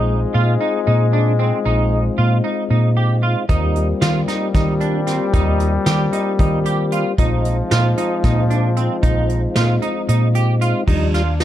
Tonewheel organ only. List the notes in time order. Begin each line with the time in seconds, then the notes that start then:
Already playing: G#3 C4 D#4 F4
3.48 G3 A#3 C4 F4
7.18 G#3 C4 D#4 F4
10.87 F3 G3 D4
11.40 D#4